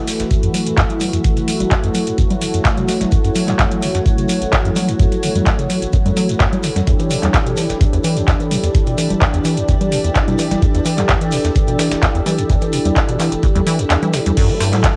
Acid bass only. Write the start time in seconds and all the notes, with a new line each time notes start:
0.07 F#3
0.20 F#1
0.31 F#2
0.43 F#2
0.54 F#3
0.66 F#2
0.78 F#2
0.90 F#3
1.01 C#3
1.13 F#2
1.24 F#2
1.37 C#3
1.48 F#3
1.60 F#1
1.71 F#2
1.84 F#2
1.95 F#3
2.07 F#2
2.18 F#2
2.31 F#3
2.42 C#3
2.54 F#2
2.65 F#2
2.78 C#3
2.89 F#3
3.01 F#1
3.12 F#2
3.24 F#2
3.35 F#3
3.48 F#2
3.59 F#2
3.71 F#3
3.82 C#3
3.95 F#2
4.06 F#2
4.18 C#3
4.29 F#3
4.42 F#1
4.53 F#2
4.65 F#2
4.76 F#3
4.88 F#2
4.99 F#2
5.12 F#3
5.23 C#3
5.35 F#2
5.46 F#2
5.59 C#3
5.70 F#3
5.82 F#1
5.93 F#2
6.06 F#2
6.17 F#3
6.29 F#2
6.40 F#2
6.52 F#3
6.64 C#3
6.76 F#2
6.87 E2
6.99 E3
7.10 B2
7.23 E2
7.34 E2
7.46 B2
7.57 E3
7.70 E1
7.81 E2
7.93 E2
8.04 E3
8.17 E2
8.28 E2
8.40 E3
8.51 B2
8.63 E2
8.74 E2
8.87 B2
8.98 E3
9.10 E1
9.21 E2
9.34 E2
9.45 E3
9.57 E2
9.68 E2
9.81 E3
9.92 B2
10.04 E2
10.15 E2
10.27 B2
10.38 E3
10.51 E1
10.62 E2
10.74 E2
10.85 E3
10.98 E2
11.09 E2
11.21 E3
11.32 B2
11.45 E2
11.56 E2
11.68 B2
11.79 E3
11.91 E1
12.02 E2
12.15 E2
12.26 E3
12.38 E2
12.49 E2
12.62 E3
12.73 B2
12.85 E2
12.96 E2
13.09 B2
13.20 E3
13.32 E1
13.43 E2
13.56 E2
13.67 E3
13.79 E2
13.90 E2
14.03 E3
14.14 B2
14.26 E2
14.37 F#2
14.49 F#3
14.61 G2
14.73 A2
14.84 F#2